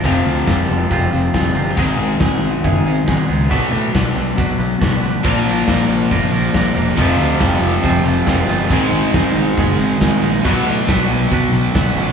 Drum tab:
HH |x-x-x-x-x-x-x-x-|x-x-x-x-x-x-x-x-|x-x-x-x-x-x-x-x-|x-x-x-x-x-x-x-x-|
SD |----o-------o---|----o-------o---|----o-------o---|-o--o-------o---|
BD |o---o---o---o---|o---o---o---o---|o---o---o---o---|o---o---o---o---|

HH |x-x-x-x-x-x-x-x-|x-x-x-x-x-x-x-x-|x-x-x-x-x-x-x-x-|
SD |----o-------o---|----o-------o---|-o--o-------o---|
BD |o---o---o---o---|o---o---o---o---|o---o---o---o---|